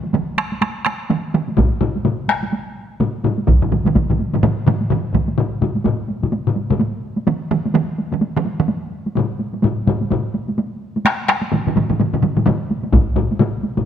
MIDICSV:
0, 0, Header, 1, 2, 480
1, 0, Start_track
1, 0, Tempo, 475813
1, 1590, Time_signature, 4, 2, 24, 8
1, 7344, Tempo, 471328
1, 14039, End_track
2, 0, Start_track
2, 0, Title_t, "Taiko and cinematic ensemble drums"
2, 35, Note_on_c, 9, 48, 50
2, 134, Note_off_c, 9, 48, 0
2, 134, Note_on_c, 9, 48, 65
2, 142, Note_on_c, 9, 47, 96
2, 234, Note_off_c, 9, 48, 0
2, 243, Note_off_c, 9, 47, 0
2, 379, Note_on_c, 9, 48, 49
2, 383, Note_on_c, 9, 37, 78
2, 480, Note_off_c, 9, 48, 0
2, 484, Note_off_c, 9, 37, 0
2, 524, Note_on_c, 9, 48, 48
2, 619, Note_off_c, 9, 48, 0
2, 619, Note_on_c, 9, 48, 69
2, 625, Note_on_c, 9, 37, 66
2, 720, Note_off_c, 9, 48, 0
2, 726, Note_off_c, 9, 37, 0
2, 865, Note_on_c, 9, 37, 76
2, 866, Note_on_c, 9, 48, 62
2, 966, Note_off_c, 9, 37, 0
2, 967, Note_off_c, 9, 48, 0
2, 1106, Note_on_c, 9, 48, 68
2, 1111, Note_on_c, 9, 47, 97
2, 1207, Note_off_c, 9, 48, 0
2, 1212, Note_off_c, 9, 47, 0
2, 1351, Note_on_c, 9, 48, 56
2, 1355, Note_on_c, 9, 47, 100
2, 1452, Note_off_c, 9, 48, 0
2, 1455, Note_off_c, 9, 47, 0
2, 1499, Note_on_c, 9, 48, 57
2, 1582, Note_on_c, 9, 45, 103
2, 1587, Note_on_c, 9, 41, 90
2, 1593, Note_off_c, 9, 48, 0
2, 1593, Note_on_c, 9, 48, 73
2, 1683, Note_off_c, 9, 45, 0
2, 1688, Note_off_c, 9, 41, 0
2, 1694, Note_off_c, 9, 48, 0
2, 1823, Note_on_c, 9, 45, 107
2, 1827, Note_on_c, 9, 48, 57
2, 1924, Note_off_c, 9, 45, 0
2, 1928, Note_off_c, 9, 48, 0
2, 1973, Note_on_c, 9, 48, 52
2, 2066, Note_off_c, 9, 48, 0
2, 2066, Note_on_c, 9, 45, 90
2, 2066, Note_on_c, 9, 48, 74
2, 2167, Note_off_c, 9, 45, 0
2, 2167, Note_off_c, 9, 48, 0
2, 2303, Note_on_c, 9, 48, 54
2, 2311, Note_on_c, 9, 37, 78
2, 2404, Note_off_c, 9, 48, 0
2, 2412, Note_off_c, 9, 37, 0
2, 2449, Note_on_c, 9, 48, 59
2, 2550, Note_off_c, 9, 48, 0
2, 2551, Note_on_c, 9, 48, 61
2, 2652, Note_off_c, 9, 48, 0
2, 3030, Note_on_c, 9, 48, 72
2, 3031, Note_on_c, 9, 45, 95
2, 3131, Note_off_c, 9, 48, 0
2, 3132, Note_off_c, 9, 45, 0
2, 3266, Note_on_c, 9, 48, 58
2, 3272, Note_on_c, 9, 45, 94
2, 3367, Note_off_c, 9, 48, 0
2, 3373, Note_off_c, 9, 45, 0
2, 3407, Note_on_c, 9, 48, 57
2, 3501, Note_off_c, 9, 48, 0
2, 3501, Note_on_c, 9, 48, 78
2, 3509, Note_on_c, 9, 41, 105
2, 3510, Note_on_c, 9, 45, 76
2, 3514, Note_on_c, 9, 47, 70
2, 3602, Note_off_c, 9, 48, 0
2, 3610, Note_off_c, 9, 41, 0
2, 3611, Note_off_c, 9, 45, 0
2, 3615, Note_off_c, 9, 47, 0
2, 3653, Note_on_c, 9, 45, 72
2, 3655, Note_on_c, 9, 47, 69
2, 3745, Note_on_c, 9, 48, 51
2, 3752, Note_off_c, 9, 45, 0
2, 3752, Note_on_c, 9, 45, 65
2, 3755, Note_off_c, 9, 47, 0
2, 3755, Note_on_c, 9, 47, 73
2, 3846, Note_off_c, 9, 48, 0
2, 3853, Note_off_c, 9, 45, 0
2, 3856, Note_off_c, 9, 47, 0
2, 3889, Note_on_c, 9, 48, 62
2, 3896, Note_on_c, 9, 45, 65
2, 3896, Note_on_c, 9, 47, 77
2, 3987, Note_on_c, 9, 41, 80
2, 3988, Note_off_c, 9, 48, 0
2, 3988, Note_on_c, 9, 48, 75
2, 3991, Note_off_c, 9, 45, 0
2, 3991, Note_on_c, 9, 45, 71
2, 3996, Note_off_c, 9, 47, 0
2, 3996, Note_on_c, 9, 47, 70
2, 4088, Note_off_c, 9, 41, 0
2, 4089, Note_off_c, 9, 48, 0
2, 4092, Note_off_c, 9, 45, 0
2, 4097, Note_off_c, 9, 47, 0
2, 4134, Note_on_c, 9, 45, 71
2, 4141, Note_on_c, 9, 47, 72
2, 4228, Note_on_c, 9, 48, 57
2, 4235, Note_off_c, 9, 45, 0
2, 4242, Note_off_c, 9, 47, 0
2, 4329, Note_off_c, 9, 48, 0
2, 4371, Note_on_c, 9, 48, 56
2, 4374, Note_on_c, 9, 45, 72
2, 4380, Note_on_c, 9, 47, 74
2, 4469, Note_off_c, 9, 48, 0
2, 4469, Note_on_c, 9, 48, 66
2, 4470, Note_off_c, 9, 45, 0
2, 4470, Note_on_c, 9, 45, 104
2, 4479, Note_off_c, 9, 47, 0
2, 4479, Note_on_c, 9, 47, 97
2, 4570, Note_off_c, 9, 45, 0
2, 4570, Note_off_c, 9, 48, 0
2, 4580, Note_off_c, 9, 47, 0
2, 4707, Note_on_c, 9, 45, 97
2, 4711, Note_on_c, 9, 48, 64
2, 4717, Note_on_c, 9, 47, 107
2, 4807, Note_off_c, 9, 45, 0
2, 4812, Note_off_c, 9, 48, 0
2, 4818, Note_off_c, 9, 47, 0
2, 4850, Note_on_c, 9, 48, 50
2, 4947, Note_off_c, 9, 48, 0
2, 4947, Note_on_c, 9, 45, 103
2, 4947, Note_on_c, 9, 48, 68
2, 4954, Note_on_c, 9, 47, 90
2, 5047, Note_off_c, 9, 45, 0
2, 5048, Note_off_c, 9, 48, 0
2, 5055, Note_off_c, 9, 47, 0
2, 5183, Note_on_c, 9, 45, 65
2, 5185, Note_on_c, 9, 41, 73
2, 5190, Note_on_c, 9, 48, 61
2, 5194, Note_on_c, 9, 47, 79
2, 5284, Note_off_c, 9, 45, 0
2, 5286, Note_off_c, 9, 41, 0
2, 5291, Note_off_c, 9, 48, 0
2, 5294, Note_off_c, 9, 47, 0
2, 5325, Note_on_c, 9, 48, 57
2, 5425, Note_on_c, 9, 45, 104
2, 5426, Note_off_c, 9, 48, 0
2, 5426, Note_on_c, 9, 48, 65
2, 5525, Note_off_c, 9, 45, 0
2, 5527, Note_off_c, 9, 48, 0
2, 5662, Note_on_c, 9, 48, 55
2, 5669, Note_on_c, 9, 45, 95
2, 5763, Note_off_c, 9, 48, 0
2, 5770, Note_off_c, 9, 45, 0
2, 5803, Note_on_c, 9, 48, 58
2, 5895, Note_off_c, 9, 48, 0
2, 5895, Note_on_c, 9, 48, 72
2, 5908, Note_on_c, 9, 45, 98
2, 5996, Note_off_c, 9, 48, 0
2, 6009, Note_off_c, 9, 45, 0
2, 6137, Note_on_c, 9, 48, 55
2, 6238, Note_off_c, 9, 48, 0
2, 6279, Note_on_c, 9, 48, 51
2, 6289, Note_on_c, 9, 45, 71
2, 6376, Note_off_c, 9, 48, 0
2, 6376, Note_on_c, 9, 48, 71
2, 6390, Note_off_c, 9, 45, 0
2, 6477, Note_off_c, 9, 48, 0
2, 6527, Note_on_c, 9, 45, 91
2, 6615, Note_on_c, 9, 48, 66
2, 6628, Note_off_c, 9, 45, 0
2, 6716, Note_off_c, 9, 48, 0
2, 6758, Note_on_c, 9, 48, 57
2, 6764, Note_on_c, 9, 45, 109
2, 6854, Note_off_c, 9, 48, 0
2, 6854, Note_on_c, 9, 48, 80
2, 6865, Note_off_c, 9, 45, 0
2, 6955, Note_off_c, 9, 48, 0
2, 7232, Note_on_c, 9, 48, 59
2, 7331, Note_off_c, 9, 48, 0
2, 7331, Note_on_c, 9, 48, 85
2, 7337, Note_on_c, 9, 47, 92
2, 7433, Note_off_c, 9, 48, 0
2, 7438, Note_off_c, 9, 47, 0
2, 7577, Note_on_c, 9, 48, 57
2, 7578, Note_on_c, 9, 47, 101
2, 7679, Note_off_c, 9, 48, 0
2, 7680, Note_off_c, 9, 47, 0
2, 7726, Note_on_c, 9, 48, 69
2, 7817, Note_off_c, 9, 48, 0
2, 7817, Note_on_c, 9, 48, 85
2, 7819, Note_on_c, 9, 47, 106
2, 7919, Note_off_c, 9, 48, 0
2, 7921, Note_off_c, 9, 47, 0
2, 8060, Note_on_c, 9, 48, 57
2, 8162, Note_off_c, 9, 48, 0
2, 8196, Note_on_c, 9, 48, 62
2, 8203, Note_on_c, 9, 47, 78
2, 8293, Note_off_c, 9, 48, 0
2, 8293, Note_on_c, 9, 48, 67
2, 8305, Note_off_c, 9, 47, 0
2, 8395, Note_off_c, 9, 48, 0
2, 8449, Note_on_c, 9, 47, 105
2, 8533, Note_on_c, 9, 48, 61
2, 8551, Note_off_c, 9, 47, 0
2, 8635, Note_off_c, 9, 48, 0
2, 8685, Note_on_c, 9, 47, 100
2, 8770, Note_on_c, 9, 48, 68
2, 8787, Note_off_c, 9, 47, 0
2, 8872, Note_off_c, 9, 48, 0
2, 9159, Note_on_c, 9, 48, 50
2, 9252, Note_off_c, 9, 48, 0
2, 9252, Note_on_c, 9, 48, 68
2, 9268, Note_on_c, 9, 45, 111
2, 9354, Note_off_c, 9, 48, 0
2, 9370, Note_off_c, 9, 45, 0
2, 9496, Note_on_c, 9, 48, 56
2, 9597, Note_off_c, 9, 48, 0
2, 9639, Note_on_c, 9, 48, 52
2, 9736, Note_off_c, 9, 48, 0
2, 9736, Note_on_c, 9, 48, 73
2, 9749, Note_on_c, 9, 45, 103
2, 9838, Note_off_c, 9, 48, 0
2, 9851, Note_off_c, 9, 45, 0
2, 9982, Note_on_c, 9, 48, 53
2, 9986, Note_on_c, 9, 45, 111
2, 10084, Note_off_c, 9, 48, 0
2, 10088, Note_off_c, 9, 45, 0
2, 10124, Note_on_c, 9, 48, 54
2, 10221, Note_off_c, 9, 48, 0
2, 10221, Note_on_c, 9, 48, 69
2, 10234, Note_on_c, 9, 45, 99
2, 10322, Note_off_c, 9, 48, 0
2, 10336, Note_off_c, 9, 45, 0
2, 10462, Note_on_c, 9, 48, 66
2, 10564, Note_off_c, 9, 48, 0
2, 10606, Note_on_c, 9, 48, 53
2, 10703, Note_off_c, 9, 48, 0
2, 10703, Note_on_c, 9, 48, 69
2, 10805, Note_off_c, 9, 48, 0
2, 11093, Note_on_c, 9, 48, 60
2, 11182, Note_off_c, 9, 48, 0
2, 11182, Note_on_c, 9, 48, 82
2, 11190, Note_on_c, 9, 37, 76
2, 11284, Note_off_c, 9, 48, 0
2, 11292, Note_off_c, 9, 37, 0
2, 11421, Note_on_c, 9, 48, 60
2, 11426, Note_on_c, 9, 37, 82
2, 11429, Note_off_c, 9, 37, 0
2, 11429, Note_on_c, 9, 37, 82
2, 11523, Note_off_c, 9, 48, 0
2, 11531, Note_off_c, 9, 37, 0
2, 11556, Note_on_c, 9, 48, 64
2, 11657, Note_off_c, 9, 48, 0
2, 11659, Note_on_c, 9, 48, 87
2, 11668, Note_on_c, 9, 45, 72
2, 11673, Note_on_c, 9, 47, 71
2, 11761, Note_off_c, 9, 48, 0
2, 11770, Note_off_c, 9, 45, 0
2, 11774, Note_off_c, 9, 47, 0
2, 11812, Note_on_c, 9, 45, 71
2, 11817, Note_on_c, 9, 47, 75
2, 11904, Note_off_c, 9, 45, 0
2, 11904, Note_on_c, 9, 45, 73
2, 11905, Note_on_c, 9, 48, 58
2, 11913, Note_off_c, 9, 47, 0
2, 11913, Note_on_c, 9, 47, 81
2, 12006, Note_off_c, 9, 45, 0
2, 12007, Note_off_c, 9, 48, 0
2, 12015, Note_off_c, 9, 47, 0
2, 12049, Note_on_c, 9, 45, 72
2, 12050, Note_on_c, 9, 48, 55
2, 12054, Note_on_c, 9, 47, 74
2, 12147, Note_off_c, 9, 45, 0
2, 12147, Note_off_c, 9, 48, 0
2, 12147, Note_on_c, 9, 45, 69
2, 12147, Note_on_c, 9, 48, 80
2, 12151, Note_off_c, 9, 47, 0
2, 12151, Note_on_c, 9, 47, 71
2, 12249, Note_off_c, 9, 45, 0
2, 12249, Note_off_c, 9, 48, 0
2, 12253, Note_off_c, 9, 47, 0
2, 12288, Note_on_c, 9, 45, 74
2, 12293, Note_on_c, 9, 47, 81
2, 12378, Note_off_c, 9, 45, 0
2, 12378, Note_on_c, 9, 45, 69
2, 12385, Note_on_c, 9, 48, 64
2, 12388, Note_off_c, 9, 47, 0
2, 12388, Note_on_c, 9, 47, 77
2, 12480, Note_off_c, 9, 45, 0
2, 12487, Note_off_c, 9, 48, 0
2, 12490, Note_off_c, 9, 47, 0
2, 12523, Note_on_c, 9, 45, 72
2, 12526, Note_on_c, 9, 47, 67
2, 12534, Note_on_c, 9, 48, 57
2, 12617, Note_off_c, 9, 47, 0
2, 12617, Note_on_c, 9, 47, 101
2, 12623, Note_off_c, 9, 45, 0
2, 12623, Note_off_c, 9, 48, 0
2, 12623, Note_on_c, 9, 45, 102
2, 12623, Note_on_c, 9, 48, 83
2, 12718, Note_off_c, 9, 47, 0
2, 12725, Note_off_c, 9, 45, 0
2, 12725, Note_off_c, 9, 48, 0
2, 12870, Note_on_c, 9, 48, 65
2, 12972, Note_off_c, 9, 48, 0
2, 13008, Note_on_c, 9, 48, 59
2, 13097, Note_on_c, 9, 45, 102
2, 13100, Note_off_c, 9, 48, 0
2, 13100, Note_on_c, 9, 48, 79
2, 13104, Note_on_c, 9, 41, 113
2, 13199, Note_off_c, 9, 45, 0
2, 13202, Note_off_c, 9, 48, 0
2, 13206, Note_off_c, 9, 41, 0
2, 13335, Note_on_c, 9, 45, 104
2, 13344, Note_on_c, 9, 48, 64
2, 13437, Note_off_c, 9, 45, 0
2, 13446, Note_off_c, 9, 48, 0
2, 13487, Note_on_c, 9, 48, 63
2, 13570, Note_on_c, 9, 45, 114
2, 13582, Note_off_c, 9, 48, 0
2, 13582, Note_on_c, 9, 48, 78
2, 13672, Note_off_c, 9, 45, 0
2, 13684, Note_off_c, 9, 48, 0
2, 13814, Note_on_c, 9, 48, 60
2, 13915, Note_off_c, 9, 48, 0
2, 13955, Note_on_c, 9, 48, 59
2, 13957, Note_on_c, 9, 45, 83
2, 14039, Note_off_c, 9, 45, 0
2, 14039, Note_off_c, 9, 48, 0
2, 14039, End_track
0, 0, End_of_file